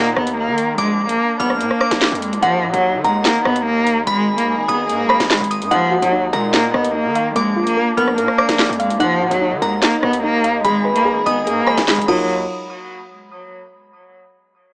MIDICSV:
0, 0, Header, 1, 7, 480
1, 0, Start_track
1, 0, Key_signature, -6, "minor"
1, 0, Tempo, 410959
1, 913, Time_signature, 4, 2, 24, 8
1, 17205, End_track
2, 0, Start_track
2, 0, Title_t, "Synth bell"
2, 0, Program_c, 0, 98
2, 0, Note_on_c, 0, 82, 79
2, 867, Note_off_c, 0, 82, 0
2, 915, Note_on_c, 0, 86, 104
2, 1591, Note_off_c, 0, 86, 0
2, 1631, Note_on_c, 0, 89, 83
2, 2083, Note_off_c, 0, 89, 0
2, 2108, Note_on_c, 0, 86, 79
2, 2788, Note_off_c, 0, 86, 0
2, 2832, Note_on_c, 0, 78, 91
2, 3510, Note_off_c, 0, 78, 0
2, 3555, Note_on_c, 0, 82, 73
2, 4708, Note_off_c, 0, 82, 0
2, 4754, Note_on_c, 0, 83, 106
2, 5430, Note_off_c, 0, 83, 0
2, 5471, Note_on_c, 0, 87, 82
2, 5923, Note_off_c, 0, 87, 0
2, 5945, Note_on_c, 0, 83, 85
2, 6400, Note_off_c, 0, 83, 0
2, 6432, Note_on_c, 0, 87, 83
2, 6661, Note_off_c, 0, 87, 0
2, 6670, Note_on_c, 0, 78, 100
2, 7348, Note_off_c, 0, 78, 0
2, 7395, Note_on_c, 0, 82, 78
2, 8548, Note_off_c, 0, 82, 0
2, 8596, Note_on_c, 0, 86, 100
2, 9272, Note_off_c, 0, 86, 0
2, 9312, Note_on_c, 0, 89, 85
2, 9764, Note_off_c, 0, 89, 0
2, 9791, Note_on_c, 0, 86, 82
2, 10469, Note_off_c, 0, 86, 0
2, 10513, Note_on_c, 0, 78, 94
2, 11190, Note_off_c, 0, 78, 0
2, 11237, Note_on_c, 0, 82, 75
2, 12389, Note_off_c, 0, 82, 0
2, 12434, Note_on_c, 0, 83, 105
2, 13110, Note_off_c, 0, 83, 0
2, 13152, Note_on_c, 0, 87, 85
2, 13604, Note_off_c, 0, 87, 0
2, 13625, Note_on_c, 0, 83, 81
2, 14080, Note_off_c, 0, 83, 0
2, 14112, Note_on_c, 0, 87, 87
2, 14336, Note_off_c, 0, 87, 0
2, 17205, End_track
3, 0, Start_track
3, 0, Title_t, "Synth pluck"
3, 0, Program_c, 1, 84
3, 6672, Note_on_c, 1, 63, 94
3, 6905, Note_on_c, 1, 66, 88
3, 7139, Note_off_c, 1, 63, 0
3, 7153, Note_on_c, 1, 63, 89
3, 7399, Note_on_c, 1, 70, 87
3, 7616, Note_off_c, 1, 63, 0
3, 7630, Note_on_c, 1, 63, 95
3, 7875, Note_on_c, 1, 75, 97
3, 8100, Note_off_c, 1, 63, 0
3, 8109, Note_off_c, 1, 66, 0
3, 8114, Note_on_c, 1, 63, 82
3, 8355, Note_on_c, 1, 77, 91
3, 8591, Note_on_c, 1, 58, 104
3, 8594, Note_off_c, 1, 63, 0
3, 8594, Note_off_c, 1, 75, 0
3, 8594, Note_off_c, 1, 77, 0
3, 8596, Note_off_c, 1, 70, 0
3, 8835, Note_on_c, 1, 65, 88
3, 9061, Note_off_c, 1, 58, 0
3, 9075, Note_on_c, 1, 58, 88
3, 9316, Note_on_c, 1, 70, 83
3, 9543, Note_off_c, 1, 58, 0
3, 9557, Note_on_c, 1, 58, 92
3, 9791, Note_on_c, 1, 74, 92
3, 10016, Note_off_c, 1, 58, 0
3, 10030, Note_on_c, 1, 58, 87
3, 10034, Note_off_c, 1, 65, 0
3, 10273, Note_on_c, 1, 77, 92
3, 10507, Note_on_c, 1, 63, 102
3, 10512, Note_off_c, 1, 58, 0
3, 10512, Note_off_c, 1, 74, 0
3, 10513, Note_off_c, 1, 77, 0
3, 10515, Note_off_c, 1, 70, 0
3, 10753, Note_on_c, 1, 66, 86
3, 10982, Note_off_c, 1, 63, 0
3, 10996, Note_on_c, 1, 63, 85
3, 11231, Note_on_c, 1, 70, 86
3, 11461, Note_off_c, 1, 63, 0
3, 11475, Note_on_c, 1, 63, 91
3, 11718, Note_on_c, 1, 75, 86
3, 11939, Note_off_c, 1, 63, 0
3, 11953, Note_off_c, 1, 66, 0
3, 11953, Note_on_c, 1, 63, 92
3, 12191, Note_on_c, 1, 77, 84
3, 12432, Note_off_c, 1, 77, 0
3, 12433, Note_off_c, 1, 63, 0
3, 12433, Note_off_c, 1, 70, 0
3, 12436, Note_off_c, 1, 75, 0
3, 12438, Note_on_c, 1, 68, 98
3, 12671, Note_on_c, 1, 71, 86
3, 12896, Note_off_c, 1, 68, 0
3, 12910, Note_on_c, 1, 68, 91
3, 13151, Note_on_c, 1, 75, 90
3, 13382, Note_off_c, 1, 68, 0
3, 13396, Note_on_c, 1, 68, 94
3, 13637, Note_on_c, 1, 80, 91
3, 13862, Note_off_c, 1, 68, 0
3, 13872, Note_off_c, 1, 71, 0
3, 13876, Note_on_c, 1, 68, 84
3, 14112, Note_off_c, 1, 75, 0
3, 14113, Note_on_c, 1, 65, 80
3, 14114, Note_on_c, 1, 63, 88
3, 14114, Note_on_c, 1, 66, 79
3, 14114, Note_on_c, 1, 70, 98
3, 14115, Note_off_c, 1, 68, 0
3, 14115, Note_off_c, 1, 80, 0
3, 14337, Note_off_c, 1, 63, 0
3, 14337, Note_off_c, 1, 65, 0
3, 14337, Note_off_c, 1, 66, 0
3, 14337, Note_off_c, 1, 70, 0
3, 17205, End_track
4, 0, Start_track
4, 0, Title_t, "String section"
4, 0, Program_c, 2, 48
4, 0, Note_on_c, 2, 51, 77
4, 0, Note_on_c, 2, 63, 72
4, 895, Note_off_c, 2, 51, 0
4, 895, Note_off_c, 2, 63, 0
4, 913, Note_on_c, 2, 62, 72
4, 914, Note_on_c, 2, 58, 79
4, 2814, Note_off_c, 2, 62, 0
4, 2815, Note_off_c, 2, 58, 0
4, 2832, Note_on_c, 2, 51, 80
4, 2833, Note_on_c, 2, 63, 74
4, 4734, Note_off_c, 2, 51, 0
4, 4734, Note_off_c, 2, 63, 0
4, 4753, Note_on_c, 2, 63, 73
4, 4753, Note_on_c, 2, 68, 91
4, 4754, Note_on_c, 2, 56, 78
4, 6654, Note_off_c, 2, 56, 0
4, 6654, Note_off_c, 2, 63, 0
4, 6654, Note_off_c, 2, 68, 0
4, 6672, Note_on_c, 2, 51, 81
4, 6672, Note_on_c, 2, 63, 75
4, 8573, Note_off_c, 2, 63, 0
4, 8574, Note_off_c, 2, 51, 0
4, 8593, Note_on_c, 2, 62, 75
4, 8594, Note_on_c, 2, 58, 81
4, 10494, Note_off_c, 2, 58, 0
4, 10494, Note_off_c, 2, 62, 0
4, 10514, Note_on_c, 2, 51, 78
4, 10514, Note_on_c, 2, 63, 75
4, 12415, Note_off_c, 2, 51, 0
4, 12435, Note_on_c, 2, 56, 80
4, 12435, Note_on_c, 2, 68, 86
4, 14078, Note_off_c, 2, 63, 0
4, 14098, Note_off_c, 2, 56, 0
4, 14098, Note_off_c, 2, 68, 0
4, 14113, Note_on_c, 2, 54, 73
4, 14113, Note_on_c, 2, 63, 66
4, 14114, Note_on_c, 2, 65, 77
4, 14336, Note_off_c, 2, 54, 0
4, 14337, Note_off_c, 2, 63, 0
4, 14337, Note_off_c, 2, 65, 0
4, 17205, End_track
5, 0, Start_track
5, 0, Title_t, "Cello"
5, 0, Program_c, 3, 42
5, 0, Note_on_c, 3, 58, 93
5, 165, Note_off_c, 3, 58, 0
5, 188, Note_on_c, 3, 59, 83
5, 400, Note_off_c, 3, 59, 0
5, 436, Note_on_c, 3, 58, 87
5, 886, Note_off_c, 3, 58, 0
5, 906, Note_on_c, 3, 56, 107
5, 1248, Note_off_c, 3, 56, 0
5, 1269, Note_on_c, 3, 58, 95
5, 1610, Note_off_c, 3, 58, 0
5, 1635, Note_on_c, 3, 59, 86
5, 1843, Note_off_c, 3, 59, 0
5, 1867, Note_on_c, 3, 58, 90
5, 2547, Note_off_c, 3, 58, 0
5, 2595, Note_on_c, 3, 56, 82
5, 2804, Note_off_c, 3, 56, 0
5, 2829, Note_on_c, 3, 53, 111
5, 3170, Note_off_c, 3, 53, 0
5, 3194, Note_on_c, 3, 54, 91
5, 3532, Note_off_c, 3, 54, 0
5, 3557, Note_on_c, 3, 56, 87
5, 3765, Note_off_c, 3, 56, 0
5, 3796, Note_on_c, 3, 58, 89
5, 4004, Note_off_c, 3, 58, 0
5, 4027, Note_on_c, 3, 59, 86
5, 4239, Note_off_c, 3, 59, 0
5, 4269, Note_on_c, 3, 58, 95
5, 4722, Note_off_c, 3, 58, 0
5, 4750, Note_on_c, 3, 56, 125
5, 5090, Note_off_c, 3, 56, 0
5, 5110, Note_on_c, 3, 58, 86
5, 5450, Note_off_c, 3, 58, 0
5, 5477, Note_on_c, 3, 59, 81
5, 5685, Note_off_c, 3, 59, 0
5, 5719, Note_on_c, 3, 58, 93
5, 6168, Note_off_c, 3, 58, 0
5, 6196, Note_on_c, 3, 56, 90
5, 6404, Note_off_c, 3, 56, 0
5, 6684, Note_on_c, 3, 53, 123
5, 7017, Note_off_c, 3, 53, 0
5, 7034, Note_on_c, 3, 54, 85
5, 7372, Note_off_c, 3, 54, 0
5, 7391, Note_on_c, 3, 56, 90
5, 7601, Note_off_c, 3, 56, 0
5, 7637, Note_on_c, 3, 58, 88
5, 7845, Note_off_c, 3, 58, 0
5, 7866, Note_on_c, 3, 59, 83
5, 8078, Note_off_c, 3, 59, 0
5, 8116, Note_on_c, 3, 58, 91
5, 8566, Note_off_c, 3, 58, 0
5, 8587, Note_on_c, 3, 56, 105
5, 8929, Note_off_c, 3, 56, 0
5, 8950, Note_on_c, 3, 58, 92
5, 9290, Note_off_c, 3, 58, 0
5, 9315, Note_on_c, 3, 59, 86
5, 9524, Note_off_c, 3, 59, 0
5, 9547, Note_on_c, 3, 58, 92
5, 10227, Note_off_c, 3, 58, 0
5, 10275, Note_on_c, 3, 56, 84
5, 10484, Note_off_c, 3, 56, 0
5, 10511, Note_on_c, 3, 53, 111
5, 10851, Note_off_c, 3, 53, 0
5, 10873, Note_on_c, 3, 54, 91
5, 11212, Note_off_c, 3, 54, 0
5, 11237, Note_on_c, 3, 56, 89
5, 11444, Note_off_c, 3, 56, 0
5, 11478, Note_on_c, 3, 58, 89
5, 11685, Note_off_c, 3, 58, 0
5, 11708, Note_on_c, 3, 59, 86
5, 11920, Note_off_c, 3, 59, 0
5, 11950, Note_on_c, 3, 58, 94
5, 12403, Note_off_c, 3, 58, 0
5, 12429, Note_on_c, 3, 56, 119
5, 12770, Note_off_c, 3, 56, 0
5, 12789, Note_on_c, 3, 58, 82
5, 13130, Note_off_c, 3, 58, 0
5, 13157, Note_on_c, 3, 59, 79
5, 13364, Note_off_c, 3, 59, 0
5, 13399, Note_on_c, 3, 58, 95
5, 13848, Note_off_c, 3, 58, 0
5, 13876, Note_on_c, 3, 56, 91
5, 14084, Note_off_c, 3, 56, 0
5, 14115, Note_on_c, 3, 54, 92
5, 14337, Note_off_c, 3, 54, 0
5, 17205, End_track
6, 0, Start_track
6, 0, Title_t, "808-style bass"
6, 0, Program_c, 4, 38
6, 0, Note_on_c, 4, 46, 104
6, 174, Note_off_c, 4, 46, 0
6, 193, Note_on_c, 4, 39, 107
6, 553, Note_on_c, 4, 51, 97
6, 571, Note_off_c, 4, 39, 0
6, 895, Note_off_c, 4, 51, 0
6, 913, Note_on_c, 4, 34, 112
6, 1374, Note_off_c, 4, 34, 0
6, 1634, Note_on_c, 4, 34, 104
6, 1874, Note_on_c, 4, 46, 99
6, 1892, Note_off_c, 4, 34, 0
6, 1988, Note_off_c, 4, 46, 0
6, 2234, Note_on_c, 4, 34, 108
6, 2464, Note_off_c, 4, 34, 0
6, 2474, Note_on_c, 4, 41, 106
6, 2714, Note_on_c, 4, 35, 100
6, 2731, Note_off_c, 4, 41, 0
6, 2828, Note_off_c, 4, 35, 0
6, 2834, Note_on_c, 4, 39, 112
6, 3074, Note_on_c, 4, 46, 99
6, 3092, Note_off_c, 4, 39, 0
6, 3188, Note_off_c, 4, 46, 0
6, 3194, Note_on_c, 4, 39, 108
6, 3434, Note_on_c, 4, 51, 98
6, 3452, Note_off_c, 4, 39, 0
6, 3548, Note_off_c, 4, 51, 0
6, 3554, Note_on_c, 4, 39, 100
6, 3784, Note_off_c, 4, 39, 0
6, 4035, Note_on_c, 4, 39, 101
6, 4725, Note_off_c, 4, 39, 0
6, 4754, Note_on_c, 4, 32, 109
6, 5113, Note_on_c, 4, 39, 96
6, 5131, Note_off_c, 4, 32, 0
6, 5293, Note_on_c, 4, 32, 95
6, 5311, Note_off_c, 4, 39, 0
6, 5464, Note_off_c, 4, 32, 0
6, 5473, Note_on_c, 4, 32, 104
6, 5714, Note_on_c, 4, 44, 98
6, 5731, Note_off_c, 4, 32, 0
6, 5894, Note_on_c, 4, 32, 101
6, 5911, Note_off_c, 4, 44, 0
6, 6065, Note_off_c, 4, 32, 0
6, 6073, Note_on_c, 4, 32, 101
6, 6304, Note_off_c, 4, 32, 0
6, 6314, Note_on_c, 4, 32, 106
6, 6554, Note_on_c, 4, 44, 103
6, 6571, Note_off_c, 4, 32, 0
6, 6668, Note_off_c, 4, 44, 0
6, 6673, Note_on_c, 4, 39, 115
6, 7019, Note_off_c, 4, 39, 0
6, 7033, Note_on_c, 4, 39, 105
6, 7379, Note_off_c, 4, 39, 0
6, 7393, Note_on_c, 4, 46, 106
6, 7854, Note_off_c, 4, 46, 0
6, 7873, Note_on_c, 4, 39, 107
6, 8232, Note_on_c, 4, 51, 103
6, 8250, Note_off_c, 4, 39, 0
6, 8575, Note_off_c, 4, 51, 0
6, 8593, Note_on_c, 4, 34, 111
6, 9054, Note_off_c, 4, 34, 0
6, 9313, Note_on_c, 4, 34, 109
6, 9553, Note_on_c, 4, 46, 100
6, 9571, Note_off_c, 4, 34, 0
6, 9667, Note_off_c, 4, 46, 0
6, 9914, Note_on_c, 4, 34, 106
6, 10144, Note_off_c, 4, 34, 0
6, 10153, Note_on_c, 4, 41, 108
6, 10394, Note_on_c, 4, 35, 106
6, 10411, Note_off_c, 4, 41, 0
6, 10508, Note_off_c, 4, 35, 0
6, 10514, Note_on_c, 4, 39, 109
6, 10754, Note_on_c, 4, 46, 100
6, 10771, Note_off_c, 4, 39, 0
6, 10868, Note_off_c, 4, 46, 0
6, 10873, Note_on_c, 4, 39, 104
6, 11113, Note_on_c, 4, 51, 101
6, 11130, Note_off_c, 4, 39, 0
6, 11227, Note_off_c, 4, 51, 0
6, 11233, Note_on_c, 4, 39, 104
6, 11464, Note_off_c, 4, 39, 0
6, 11714, Note_on_c, 4, 39, 105
6, 12405, Note_off_c, 4, 39, 0
6, 12434, Note_on_c, 4, 32, 113
6, 12794, Note_on_c, 4, 39, 102
6, 12811, Note_off_c, 4, 32, 0
6, 12974, Note_on_c, 4, 32, 98
6, 12992, Note_off_c, 4, 39, 0
6, 13145, Note_off_c, 4, 32, 0
6, 13154, Note_on_c, 4, 32, 106
6, 13394, Note_on_c, 4, 44, 100
6, 13411, Note_off_c, 4, 32, 0
6, 13573, Note_on_c, 4, 32, 103
6, 13591, Note_off_c, 4, 44, 0
6, 13744, Note_off_c, 4, 32, 0
6, 13754, Note_on_c, 4, 32, 106
6, 13984, Note_off_c, 4, 32, 0
6, 13994, Note_on_c, 4, 32, 107
6, 14106, Note_off_c, 4, 32, 0
6, 14113, Note_on_c, 4, 39, 112
6, 14560, Note_off_c, 4, 39, 0
6, 17205, End_track
7, 0, Start_track
7, 0, Title_t, "Drums"
7, 193, Note_on_c, 9, 37, 100
7, 309, Note_off_c, 9, 37, 0
7, 314, Note_on_c, 9, 42, 83
7, 431, Note_off_c, 9, 42, 0
7, 675, Note_on_c, 9, 42, 86
7, 791, Note_off_c, 9, 42, 0
7, 913, Note_on_c, 9, 42, 83
7, 1030, Note_off_c, 9, 42, 0
7, 1275, Note_on_c, 9, 42, 83
7, 1392, Note_off_c, 9, 42, 0
7, 1636, Note_on_c, 9, 42, 65
7, 1753, Note_off_c, 9, 42, 0
7, 1753, Note_on_c, 9, 37, 70
7, 1870, Note_off_c, 9, 37, 0
7, 1875, Note_on_c, 9, 42, 75
7, 1992, Note_off_c, 9, 42, 0
7, 1994, Note_on_c, 9, 37, 79
7, 2111, Note_off_c, 9, 37, 0
7, 2113, Note_on_c, 9, 37, 100
7, 2230, Note_off_c, 9, 37, 0
7, 2233, Note_on_c, 9, 38, 71
7, 2235, Note_on_c, 9, 42, 82
7, 2350, Note_off_c, 9, 38, 0
7, 2352, Note_off_c, 9, 42, 0
7, 2352, Note_on_c, 9, 42, 41
7, 2353, Note_on_c, 9, 38, 116
7, 2362, Note_on_c, 9, 39, 93
7, 2433, Note_off_c, 9, 42, 0
7, 2433, Note_on_c, 9, 42, 55
7, 2470, Note_off_c, 9, 38, 0
7, 2479, Note_off_c, 9, 39, 0
7, 2513, Note_off_c, 9, 42, 0
7, 2513, Note_on_c, 9, 42, 70
7, 2596, Note_off_c, 9, 42, 0
7, 2596, Note_on_c, 9, 42, 81
7, 2712, Note_off_c, 9, 42, 0
7, 2721, Note_on_c, 9, 42, 75
7, 2833, Note_off_c, 9, 42, 0
7, 2833, Note_on_c, 9, 42, 82
7, 2950, Note_off_c, 9, 42, 0
7, 3196, Note_on_c, 9, 42, 81
7, 3313, Note_off_c, 9, 42, 0
7, 3556, Note_on_c, 9, 42, 64
7, 3673, Note_off_c, 9, 42, 0
7, 3794, Note_on_c, 9, 38, 104
7, 3796, Note_on_c, 9, 42, 75
7, 3804, Note_on_c, 9, 39, 81
7, 3911, Note_off_c, 9, 38, 0
7, 3912, Note_off_c, 9, 42, 0
7, 3921, Note_off_c, 9, 39, 0
7, 4033, Note_on_c, 9, 37, 96
7, 4150, Note_off_c, 9, 37, 0
7, 4156, Note_on_c, 9, 42, 80
7, 4273, Note_off_c, 9, 42, 0
7, 4517, Note_on_c, 9, 42, 86
7, 4633, Note_off_c, 9, 42, 0
7, 4754, Note_on_c, 9, 42, 82
7, 4871, Note_off_c, 9, 42, 0
7, 5116, Note_on_c, 9, 42, 82
7, 5233, Note_off_c, 9, 42, 0
7, 5477, Note_on_c, 9, 42, 65
7, 5594, Note_off_c, 9, 42, 0
7, 5717, Note_on_c, 9, 42, 76
7, 5833, Note_off_c, 9, 42, 0
7, 5954, Note_on_c, 9, 37, 101
7, 6071, Note_off_c, 9, 37, 0
7, 6074, Note_on_c, 9, 38, 72
7, 6076, Note_on_c, 9, 42, 83
7, 6191, Note_off_c, 9, 38, 0
7, 6193, Note_off_c, 9, 42, 0
7, 6194, Note_on_c, 9, 42, 44
7, 6195, Note_on_c, 9, 38, 118
7, 6204, Note_on_c, 9, 39, 94
7, 6274, Note_off_c, 9, 42, 0
7, 6274, Note_on_c, 9, 42, 56
7, 6311, Note_off_c, 9, 38, 0
7, 6321, Note_off_c, 9, 39, 0
7, 6354, Note_off_c, 9, 42, 0
7, 6354, Note_on_c, 9, 42, 70
7, 6436, Note_off_c, 9, 42, 0
7, 6436, Note_on_c, 9, 42, 85
7, 6553, Note_off_c, 9, 42, 0
7, 6561, Note_on_c, 9, 42, 75
7, 6674, Note_off_c, 9, 42, 0
7, 6674, Note_on_c, 9, 42, 81
7, 6791, Note_off_c, 9, 42, 0
7, 7037, Note_on_c, 9, 42, 82
7, 7153, Note_off_c, 9, 42, 0
7, 7396, Note_on_c, 9, 42, 62
7, 7513, Note_off_c, 9, 42, 0
7, 7634, Note_on_c, 9, 38, 102
7, 7635, Note_on_c, 9, 42, 78
7, 7643, Note_on_c, 9, 39, 82
7, 7751, Note_off_c, 9, 38, 0
7, 7752, Note_off_c, 9, 42, 0
7, 7760, Note_off_c, 9, 39, 0
7, 7873, Note_on_c, 9, 37, 97
7, 7990, Note_off_c, 9, 37, 0
7, 7995, Note_on_c, 9, 42, 83
7, 8112, Note_off_c, 9, 42, 0
7, 8356, Note_on_c, 9, 42, 81
7, 8473, Note_off_c, 9, 42, 0
7, 8594, Note_on_c, 9, 42, 82
7, 8711, Note_off_c, 9, 42, 0
7, 8956, Note_on_c, 9, 42, 80
7, 9073, Note_off_c, 9, 42, 0
7, 9316, Note_on_c, 9, 42, 65
7, 9433, Note_off_c, 9, 42, 0
7, 9433, Note_on_c, 9, 37, 67
7, 9550, Note_off_c, 9, 37, 0
7, 9555, Note_on_c, 9, 42, 76
7, 9671, Note_off_c, 9, 42, 0
7, 9673, Note_on_c, 9, 37, 78
7, 9790, Note_off_c, 9, 37, 0
7, 9794, Note_on_c, 9, 37, 98
7, 9910, Note_off_c, 9, 37, 0
7, 9914, Note_on_c, 9, 38, 74
7, 9916, Note_on_c, 9, 42, 84
7, 10031, Note_off_c, 9, 38, 0
7, 10033, Note_off_c, 9, 42, 0
7, 10034, Note_on_c, 9, 38, 118
7, 10034, Note_on_c, 9, 42, 43
7, 10044, Note_on_c, 9, 39, 92
7, 10114, Note_off_c, 9, 42, 0
7, 10114, Note_on_c, 9, 42, 57
7, 10151, Note_off_c, 9, 38, 0
7, 10160, Note_off_c, 9, 39, 0
7, 10194, Note_off_c, 9, 42, 0
7, 10194, Note_on_c, 9, 42, 68
7, 10276, Note_off_c, 9, 42, 0
7, 10276, Note_on_c, 9, 42, 83
7, 10393, Note_off_c, 9, 42, 0
7, 10400, Note_on_c, 9, 42, 77
7, 10514, Note_off_c, 9, 42, 0
7, 10514, Note_on_c, 9, 42, 85
7, 10631, Note_off_c, 9, 42, 0
7, 10876, Note_on_c, 9, 42, 81
7, 10993, Note_off_c, 9, 42, 0
7, 11237, Note_on_c, 9, 42, 64
7, 11353, Note_off_c, 9, 42, 0
7, 11473, Note_on_c, 9, 38, 100
7, 11474, Note_on_c, 9, 42, 76
7, 11482, Note_on_c, 9, 39, 80
7, 11590, Note_off_c, 9, 38, 0
7, 11591, Note_off_c, 9, 42, 0
7, 11599, Note_off_c, 9, 39, 0
7, 11713, Note_on_c, 9, 37, 97
7, 11830, Note_off_c, 9, 37, 0
7, 11836, Note_on_c, 9, 42, 84
7, 11953, Note_off_c, 9, 42, 0
7, 12196, Note_on_c, 9, 42, 85
7, 12312, Note_off_c, 9, 42, 0
7, 12434, Note_on_c, 9, 42, 85
7, 12551, Note_off_c, 9, 42, 0
7, 12797, Note_on_c, 9, 42, 79
7, 12914, Note_off_c, 9, 42, 0
7, 13157, Note_on_c, 9, 42, 65
7, 13274, Note_off_c, 9, 42, 0
7, 13396, Note_on_c, 9, 42, 73
7, 13513, Note_off_c, 9, 42, 0
7, 13634, Note_on_c, 9, 37, 95
7, 13751, Note_off_c, 9, 37, 0
7, 13753, Note_on_c, 9, 38, 74
7, 13755, Note_on_c, 9, 42, 81
7, 13870, Note_off_c, 9, 38, 0
7, 13872, Note_off_c, 9, 42, 0
7, 13874, Note_on_c, 9, 38, 118
7, 13874, Note_on_c, 9, 42, 43
7, 13884, Note_on_c, 9, 39, 91
7, 13954, Note_off_c, 9, 42, 0
7, 13954, Note_on_c, 9, 42, 58
7, 13991, Note_off_c, 9, 38, 0
7, 14000, Note_off_c, 9, 39, 0
7, 14034, Note_off_c, 9, 42, 0
7, 14034, Note_on_c, 9, 42, 71
7, 14114, Note_on_c, 9, 49, 93
7, 14151, Note_off_c, 9, 42, 0
7, 14231, Note_off_c, 9, 49, 0
7, 17205, End_track
0, 0, End_of_file